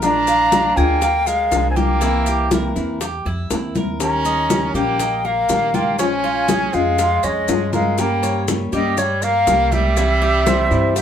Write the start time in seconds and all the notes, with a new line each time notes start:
Already playing: A#1 A#4
0.02 F3 G#3 D4 F4 A#5, high bongo, high conga, maracas
0.27 F5, high bongo, high conga, maracas
0.52 F3 G#3 D4 F4, high bongo, high conga, maracas
0.77 D2 G#3 A#3 D4 F4 G#4 G5, high conga, maracas
1.02 F5, muted nylon-string guitar stroke, high bongo, high conga, maracas
1.26 G#3 A#4 F5, high bongo, high conga, maracas
1.51 C2 F3 G#3 D4 F4, high bongo, low bongo, high conga, maracas
1.70 C4 G#5
1.76 A#3 G4 G5, high bongo, high conga, maracas
2.01 C3 E3 A#3 C4 E4, high bongo, high conga, maracas
2.26 G4, high conga, maracas
2.51 E3 A#3 C4 E4 A#4, high bongo, high conga, maracas
2.75 E2 E3 A#3 C4 E4, high bongo, high conga, maracas
3.01 G4, muted nylon-string guitar stroke, high bongo, high conga, maracas
3.25 F2 E4, high bongo, high conga
3.50 D#2 A#3 C4 E4, high bongo, low bongo, high conga, maracas
3.75 A#4, high bongo, high conga, maracas
3.99 D#3 G3 C#4 G4 A#5, high bongo, high conga, maracas
4.25 D#5, high bongo, high conga, maracas
4.49 D#3 G3 C#4 G4, high bongo, high conga, maracas
4.74 A#1 G3 A#3 C#4 G4 G5, high conga, maracas
4.99 D#5, muted nylon-string guitar stroke, high bongo, high conga, maracas
5.25 A#3 A#4 F5, high bongo, high conga
5.49 A#1 D#3 G3 C#4 G4, high bongo, low bongo, high conga, maracas
5.74 A#3 F4 G5, high bongo, high conga, maracas
5.99 F3 G#3 C#4 F4 G#5, high bongo, high conga, maracas
6.24 F4, high conga
6.48 F3 G#3 C#4 F4 G#4, high bongo, high conga, maracas
6.73 F2 G#3 C#4 F4 F5, high bongo, high conga, maracas
6.98 F4, muted nylon-string guitar stroke, high bongo, high conga, maracas
7.23 F2 G#3 C#4 D#5, high bongo, high conga, maracas
7.48 G2 F3 C#4 F4, high bongo, low bongo, high conga, maracas
7.73 G#3 A#4 F5, high bongo, high conga, maracas
7.98 G3 A#3 C#4 G4 G5, high bongo, high conga, maracas
8.23 C#5, high bongo, high conga, maracas
8.48 G3 A#3 C#4 G4, high bongo, high conga, maracas
8.72 G2 G3 A#3 C#4 G4 D#5, high conga, maracas
8.97 G3 C#5, muted nylon-string guitar stroke, high bongo, high conga, maracas
9.22 A#3 A#4 F5, high bongo, high conga, maracas
9.47 C2 G3 A#3 C#4 G4, high bongo, low bongo, high conga, maracas
9.72 G3 G4 E5, high bongo, high conga, maracas
9.96 C3 E3 G3 C4 E4, high bongo, high conga, maracas
10.22 G4, high conga
10.46 E3 G3 C4 E4 C5, high bongo, high conga, maracas
10.71 G2 E3 G3 C4 E4, high bongo, high conga, maracas
10.96 G4, muted nylon-string guitar stroke, high bongo, high conga, maracas